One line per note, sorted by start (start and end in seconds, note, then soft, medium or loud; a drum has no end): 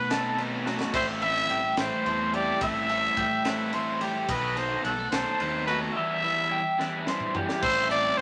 0.00 0.76 B2 medium
0.00 0.36 D#3 medium
0.00 0.66 A3 medium
0.00 0.90 F#4 medium
0.00 0.38 B4 medium
0.00 0.10 F#5 medium
0.10 0.37 F#3 medium
0.10 0.38 B3 medium
0.10 1.77 C4 medium
0.10 0.38 D#4 medium
0.10 0.38 A4 medium
0.10 0.39 A4 loud
0.10 snare loud
0.10 ride medium
0.37 0.90 D#3 medium
0.37 0.66 F#3 medium
0.37 0.66 B3 medium
0.37 0.66 D#4 medium
0.37 0.65 A4 medium
0.37 0.66 B4 medium
0.37 ride medium
0.66 0.94 F#3 medium
0.66 0.96 A3 medium
0.66 0.94 B3 medium
0.66 0.94 D#4 medium
0.66 0.94 F#4 medium
0.66 0.94 A4 medium
0.66 snare medium
0.81 snare medium
0.93 1.41 A1 loud
0.93 2.60 A2 medium
0.93 1.22 A3 medium
0.93 1.22 C4 medium
0.93 1.21 E4 medium
0.93 2.58 G4 medium
0.93 1.21 A4 medium
0.93 1.07 C5 loud
0.93 1.50 E5 medium
0.93 kick loud
0.93 crash loud
0.93 ride loud
1.22 2.04 E3 medium
1.22 1.59 A3 medium
1.22 1.58 C4 medium
1.22 1.58 E4 medium
1.22 1.58 A4 medium
1.22 1.74 E5 loud
1.22 ride medium
1.50 1.73 A1 medium
1.50 2.33 G3 medium
1.50 1.78 G5 medium
1.50 ride medium
1.77 1.89 A1 loud
1.77 2.05 A3 medium
1.77 3.45 C4 medium
1.77 2.05 C4 medium
1.77 2.06 E4 loud
1.77 2.06 A4 loud
1.77 2.05 B4 medium
1.77 2.36 C5 medium
1.77 snare loud
1.77 ride medium
2.05 2.52 E2 medium
2.05 2.58 E3 medium
2.05 2.34 A3 medium
2.05 2.33 C4 medium
2.05 2.33 E4 medium
2.05 2.32 A4 medium
2.05 2.33 C5 medium
2.05 ride medium
2.33 3.17 G3 medium
2.33 2.61 A3 medium
2.33 2.61 C4 medium
2.33 2.61 E4 medium
2.33 2.61 G4 medium
2.33 2.61 A4 medium
2.33 2.61 D5 medium
2.33 ride medium
2.61 3.08 A1 loud
2.61 4.28 A2 medium
2.61 2.89 A3 medium
2.61 2.89 C4 medium
2.61 2.75 E4 medium
2.61 2.89 E4 medium
2.61 2.88 A4 loud
2.61 3.17 E5 medium
2.61 3.97 E5 loud
2.61 kick loud
2.61 ride loud
2.75 4.28 G4 medium
2.89 3.71 E3 medium
2.89 3.26 A3 medium
2.89 3.26 C4 medium
2.89 3.26 E4 medium
2.89 3.26 A4 medium
2.89 ride medium
3.17 4.11 A2 medium
3.17 4.00 G3 medium
3.17 3.45 G5 medium
3.17 kick medium
3.17 ride medium
3.45 3.72 A3 medium
3.45 4.25 C4 medium
3.45 3.73 C4 medium
3.45 3.73 E4 medium
3.45 3.73 A4 loud
3.45 3.73 B4 medium
3.45 snare loud
3.45 ride loud
3.72 4.25 E3 medium
3.72 4.01 A3 medium
3.72 4.01 C4 medium
3.72 4.00 E4 medium
3.72 4.00 A4 medium
3.72 4.01 C5 medium
3.72 ride medium
4.01 4.29 G3 medium
4.01 4.27 A3 medium
4.01 4.28 C4 medium
4.01 4.28 E4 medium
4.01 4.29 G4 medium
4.01 4.28 A4 medium
4.01 ride medium
4.28 4.75 B1 loud
4.28 4.57 B2 medium
4.28 4.56 F#3 medium
4.28 4.56 B3 medium
4.28 4.55 D#4 medium
4.28 4.42 E4 medium
4.28 4.55 A4 loud
4.28 4.60 B4 medium
4.28 4.84 D#5 medium
4.28 kick loud
4.28 ride loud
4.42 5.96 F#4 medium
4.56 5.39 D#3 medium
4.56 4.93 F#3 medium
4.56 4.93 B3 medium
4.56 4.93 D#4 medium
4.56 4.92 A4 medium
4.56 4.84 C5 medium
4.56 ride medium
4.84 5.08 B1 medium
4.84 4.99 G3 medium
4.84 5.10 A4 medium
4.84 5.12 F#5 medium
4.84 ride medium
4.99 5.68 A3 soft
5.11 5.24 B1 medium
5.11 5.39 F#3 medium
5.11 5.40 B3 medium
5.11 5.93 C4 medium
5.11 5.40 D#4 medium
5.11 5.39 A4 medium
5.11 5.40 A4 loud
5.11 5.63 C5 medium
5.11 snare loud
5.11 ride loud
5.39 5.87 D#2 medium
5.39 5.93 D#3 medium
5.39 5.68 F#3 medium
5.39 5.68 B3 medium
5.39 5.67 D#4 medium
5.39 5.67 A4 medium
5.39 5.67 B4 medium
5.39 ride medium
5.66 5.96 F#3 medium
5.66 5.93 A3 medium
5.66 5.96 B3 medium
5.66 5.96 D#4 medium
5.66 5.96 F#4 medium
5.66 5.96 A4 medium
5.66 5.79 B4 medium
5.66 ride medium
5.94 7.63 E2 medium
5.94 6.23 E3 medium
5.94 6.23 G3 medium
5.94 6.23 B3 medium
5.94 6.22 E4 medium
5.94 7.60 G4 medium
5.94 7.02 E5 loud
5.94 6.51 E5 medium
6.23 7.06 E3 medium
6.23 6.60 E3 medium
6.23 6.60 G3 medium
6.23 6.60 B3 medium
6.23 6.60 E4 medium
6.51 7.34 G3 medium
6.51 6.79 G5 medium
6.78 7.05 E3 medium
6.78 7.06 G3 medium
6.78 7.06 B3 medium
6.78 7.60 D4 medium
6.78 7.06 E4 loud
6.78 7.07 B4 medium
6.78 snare medium
7.06 7.34 E3 medium
7.06 7.59 E3 medium
7.06 7.34 G3 medium
7.06 7.34 B3 medium
7.06 7.33 E4 medium
7.06 7.35 C5 medium
7.06 snare medium
7.20 mid tom medium
7.34 7.63 E3 medium
7.34 7.62 G3 medium
7.34 8.21 G3 medium
7.34 7.62 B3 medium
7.34 7.62 E4 medium
7.34 7.63 G4 medium
7.34 floor tom loud
7.49 snare medium
7.62 8.10 A1 loud
7.62 7.90 A3 medium
7.62 7.89 C4 medium
7.62 7.89 E4 medium
7.62 7.88 A4 loud
7.62 7.88 C5 loud
7.62 8.19 E5 medium
7.62 kick loud
7.62 crash loud
7.89 8.21 A3 medium
7.89 8.21 C4 medium
7.89 8.21 E4 medium
7.89 8.21 A4 medium
7.89 8.19 D5 loud
7.89 ride medium
8.18 8.21 C5 loud